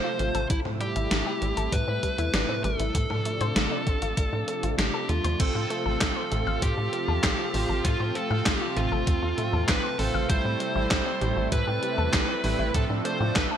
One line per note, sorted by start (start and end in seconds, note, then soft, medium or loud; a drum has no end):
0.00 2.91 C3 medium
0.00 0.46 F3 medium
0.00 5.36 A3 medium
0.00 0.46 F4 medium
0.00 0.46 C5 loud
0.04 0.18 F4 medium
0.19 0.31 A1 medium
0.19 0.33 A3 medium
0.19 closed hi-hat medium
0.35 0.46 A1 medium
0.35 0.49 A4 loud
0.35 closed hi-hat medium
0.50 0.62 A1 loud
0.50 0.58 G3 medium
0.50 2.93 G3 medium
0.50 0.58 E4 loud
0.50 2.93 E4 medium
0.50 kick loud
0.50 closed hi-hat medium
0.65 0.77 A2 medium
0.65 0.74 C4 medium
0.65 mid tom medium
0.81 0.94 G3 loud
0.81 1.75 G4 loud
0.81 closed hi-hat medium
0.96 1.08 A1 medium
0.96 1.10 E4 medium
0.96 closed hi-hat medium
1.11 1.23 A1 loud
1.11 1.19 G3 medium
1.11 snare loud
1.11 closed hi-hat medium
1.26 1.40 G4 medium
1.42 1.53 A1 medium
1.42 1.56 G3 medium
1.42 closed hi-hat medium
1.57 1.69 A1 medium
1.57 1.72 A4 loud
1.57 closed hi-hat medium
1.72 1.84 A2 loud
1.72 1.86 G3 medium
1.72 2.64 B4 loud
1.72 kick loud
1.72 closed hi-hat medium
1.88 1.99 A2 medium
1.88 2.01 C4 medium
2.03 2.17 G3 medium
2.03 kick medium
2.03 closed hi-hat medium
2.18 2.30 E2 medium
2.18 2.33 E4 loud
2.18 closed hi-hat medium
2.34 2.45 A1 loud
2.34 2.42 G3 medium
2.34 snare loud
2.34 closed hi-hat medium
2.49 2.57 C4 medium
2.49 mid tom medium
2.64 2.76 A1 medium
2.64 2.78 G3 loud
2.64 4.75 A4 medium
2.64 closed hi-hat medium
2.80 2.91 A1 medium
2.80 2.94 E4 medium
2.80 closed hi-hat medium
2.95 3.06 A2 loud
2.95 5.37 C3 medium
2.95 5.37 F3 medium
2.95 3.03 A3 medium
2.95 5.37 D4 medium
2.95 kick loud
2.95 closed hi-hat medium
3.10 3.22 A2 medium
3.10 3.24 A4 medium
3.10 mid tom medium
3.25 3.39 A3 medium
3.25 closed hi-hat medium
3.41 3.52 A2 medium
3.41 3.55 C5 loud
3.41 closed hi-hat medium
3.56 3.68 A1 loud
3.56 3.70 A3 medium
3.56 snare loud
3.56 closed hi-hat medium
3.71 3.85 D4 medium
3.87 3.98 A1 medium
3.87 4.00 A3 medium
3.87 kick loud
3.87 closed hi-hat medium
4.02 4.14 A1 medium
4.02 4.17 F4 loud
4.02 closed hi-hat medium
4.17 4.29 A1 loud
4.17 4.26 A3 medium
4.17 kick loud
4.17 closed hi-hat medium
4.33 4.44 A2 medium
4.33 4.41 D4 medium
4.48 4.62 A3 loud
4.48 closed hi-hat medium
4.63 4.75 A1 medium
4.63 4.78 F4 medium
4.63 closed hi-hat medium
4.79 4.90 A1 loud
4.79 4.87 A3 medium
4.79 5.09 G4 loud
4.79 snare loud
4.79 closed hi-hat medium
4.94 5.08 A4 medium
5.09 5.21 E2 medium
5.09 5.23 A3 medium
5.09 5.38 F4 medium
5.09 closed hi-hat medium
5.24 5.36 E2 medium
5.24 5.39 C5 loud
5.24 closed hi-hat medium
5.40 5.51 A1 loud
5.40 13.57 C3 medium
5.40 10.26 F3 medium
5.40 5.48 A3 medium
5.40 13.57 A3 medium
5.40 5.82 C4 medium
5.40 10.26 F4 medium
5.40 5.82 F4 medium
5.40 5.82 A4 loud
5.40 6.66 A4 loud
5.40 kick loud
5.40 closed hi-hat loud
5.40 crash loud
5.55 5.67 A2 medium
5.55 5.63 F4 medium
5.70 5.84 A3 loud
5.70 closed hi-hat medium
5.86 5.97 A1 medium
5.86 7.50 C4 medium
5.86 7.50 F4 medium
5.86 7.50 A4 medium
5.86 6.00 A4 medium
6.01 6.13 A1 loud
6.01 6.09 A3 medium
6.01 kick loud
6.01 snare loud
6.01 clap loud
6.01 closed hi-hat loud
6.16 6.30 C5 medium
6.31 6.43 A1 medium
6.31 6.45 A3 medium
6.31 closed hi-hat medium
6.31 mid tom medium
6.47 6.59 A1 medium
6.47 6.62 F5 loud
6.62 6.74 A2 loud
6.62 6.76 A3 medium
6.62 7.88 G4 loud
6.62 kick loud
6.62 closed hi-hat loud
6.78 6.89 A2 medium
6.78 6.91 F4 medium
6.93 7.07 A3 medium
6.93 closed hi-hat medium
7.08 7.20 E2 medium
7.08 7.23 A4 loud
7.23 7.35 A1 loud
7.23 7.32 A3 medium
7.23 kick loud
7.23 snare loud
7.23 clap loud
7.23 closed hi-hat loud
7.39 7.47 F4 medium
7.54 7.66 A1 loud
7.54 7.68 A3 loud
7.54 7.81 C4 loud
7.54 7.81 F4 loud
7.54 7.81 C5 loud
7.54 mid tom medium
7.54 open hi-hat medium
7.69 7.81 A1 medium
7.69 7.84 A4 medium
7.85 7.96 A2 loud
7.85 7.93 A3 medium
7.85 8.27 C4 medium
7.85 8.27 F4 medium
7.85 8.16 F4 loud
7.85 8.27 A4 loud
7.85 kick loud
7.85 closed hi-hat loud
8.00 8.12 A2 medium
8.00 8.14 C5 medium
8.15 8.29 A3 medium
8.15 8.46 A4 loud
8.15 closed hi-hat medium
8.31 8.42 A2 medium
8.31 9.95 C4 medium
8.31 9.95 F4 medium
8.31 9.95 A4 medium
8.31 8.45 F5 loud
8.46 8.58 A1 loud
8.46 8.60 A3 medium
8.46 8.78 G4 loud
8.46 kick loud
8.46 snare loud
8.46 clap loud
8.46 closed hi-hat medium
8.61 8.75 F4 medium
8.77 8.88 A1 medium
8.77 8.90 A3 medium
8.77 9.71 F4 loud
8.77 closed hi-hat medium
8.77 mid tom medium
8.92 9.03 A1 medium
8.92 9.06 A4 loud
9.07 9.19 E2 loud
9.07 9.15 A3 medium
9.07 kick loud
9.07 closed hi-hat loud
9.22 9.34 E2 medium
9.22 9.31 F4 medium
9.38 9.51 A3 loud
9.38 closed hi-hat medium
9.38 mid tom medium
9.53 9.65 E2 medium
9.53 9.68 A4 medium
9.68 9.80 A1 loud
9.68 9.77 A3 medium
9.68 9.99 B4 loud
9.68 kick loud
9.68 snare loud
9.68 clap loud
9.68 closed hi-hat loud
9.84 9.97 C5 medium
9.99 10.11 A1 medium
9.99 10.13 A3 medium
9.99 10.26 C4 loud
9.99 10.26 F4 medium
9.99 10.29 A4 loud
9.99 10.26 C5 loud
9.99 mid tom medium
9.99 open hi-hat medium
10.14 10.26 A1 medium
10.14 10.29 F5 loud
10.30 10.41 A1 loud
10.30 10.72 G3 medium
10.30 12.72 G3 medium
10.30 10.43 G3 medium
10.30 10.72 A3 medium
10.30 10.72 C4 medium
10.30 10.72 E4 medium
10.30 12.72 E4 medium
10.30 10.72 A4 loud
10.30 11.48 C5 loud
10.30 kick loud
10.30 closed hi-hat medium
10.45 10.56 A2 medium
10.45 10.59 C4 medium
10.60 10.74 G3 medium
10.60 closed hi-hat medium
10.75 10.87 A1 medium
10.75 12.40 G3 medium
10.75 12.40 A3 medium
10.75 12.40 C4 medium
10.75 12.40 E4 medium
10.75 10.90 E4 loud
10.75 12.40 A4 medium
10.91 11.02 A1 loud
10.91 10.99 G3 medium
10.91 kick loud
10.91 snare loud
10.91 clap medium
10.91 closed hi-hat medium
11.06 11.14 C4 medium
11.21 11.33 A1 medium
11.21 11.35 G3 loud
11.21 closed hi-hat medium
11.21 mid tom medium
11.37 11.48 A1 medium
11.37 11.51 E4 medium
11.52 11.64 A2 loud
11.52 11.60 G3 medium
11.52 12.74 B4 loud
11.52 kick loud
11.52 closed hi-hat loud
11.67 11.79 A2 medium
11.67 11.81 G4 medium
11.83 11.96 G3 medium
11.83 closed hi-hat medium
11.98 12.10 E2 medium
11.98 12.12 A4 loud
12.13 12.25 A1 loud
12.13 12.27 G3 medium
12.13 kick loud
12.13 snare loud
12.13 clap medium
12.13 closed hi-hat loud
12.29 12.42 C4 medium
12.44 12.55 A1 loud
12.44 12.58 G3 medium
12.44 12.71 G3 loud
12.44 12.71 A3 loud
12.44 12.71 C4 medium
12.44 12.71 E4 medium
12.44 12.71 B4 loud
12.44 mid tom medium
12.44 open hi-hat medium
12.59 12.71 A1 medium
12.59 12.74 E4 loud
12.74 12.86 A2 loud
12.74 13.17 F3 medium
12.74 13.57 F3 medium
12.74 13.17 A3 medium
12.74 12.83 A3 medium
12.74 13.17 C4 medium
12.74 13.17 D4 medium
12.74 13.57 D4 medium
12.74 13.17 A4 loud
12.74 12.83 A4 loud
12.74 kick loud
12.74 closed hi-hat medium
12.90 13.01 A2 medium
12.90 12.98 D4 medium
13.05 13.19 A3 loud
13.05 13.34 C5 loud
13.05 closed hi-hat medium
13.20 13.32 A2 medium
13.20 13.57 F3 medium
13.20 13.57 A3 medium
13.20 13.57 C4 medium
13.20 13.57 D4 medium
13.20 13.35 F4 medium
13.20 13.57 A4 medium
13.36 13.47 A1 loud
13.36 13.44 A3 medium
13.36 13.44 B4 loud
13.36 kick loud
13.36 snare loud
13.36 clap medium
13.36 closed hi-hat medium
13.51 13.57 A4 medium